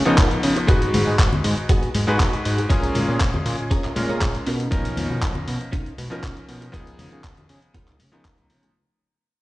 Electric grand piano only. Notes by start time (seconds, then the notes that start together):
0.05 F3 B3 D#4
0.67 G#3 D#4 F#4 B4
2.07 G#3 D#4 F#4 B4
2.70 G#3 C#4 F4 G#4
3.96 G#3 C#4 F4 A#4
4.71 F3 C#4 D#4 A#4
6.10 F3 C#4 D#4 A#4
6.72 F3 B3 D#4 G#4
8.12 F3 B3 D#4